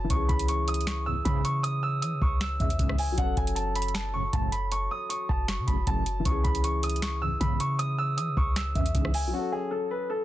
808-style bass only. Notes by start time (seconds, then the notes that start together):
0.10 C#2
0.29 C#2
1.25 C#3
2.02 E3
2.13 C#3
2.22 C#2
2.60 E2
2.79 C#2
3.09 B1
3.18 F#1
3.37 F#1
4.33 F#1
5.29 F#1
5.59 C#3
5.68 F#1
5.87 F#1
6.25 C#2
6.45 C#2
7.41 C#3
8.18 E3
8.28 C#3
8.37 C#2
8.75 E2
8.95 C#2
9.24 B1